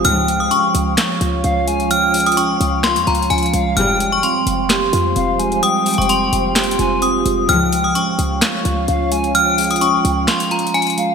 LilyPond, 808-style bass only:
\new Staff \with { instrumentName = "808-style bass" } { \clef bass \time 4/4 \key des \lydian \tempo 4 = 129 des,4 r8 des,8 r8 des,8 des,4~ | des,4. des,8. f,16 des,8 des,8 c,8 | f,,4 r8 f,,4 f,8 f,,4 | r8. f,,8. f,,4 f,,4 f,,8 |
des,4 r8 des,8 r8 des,8 des,4~ | des,4. des,8 r2 | }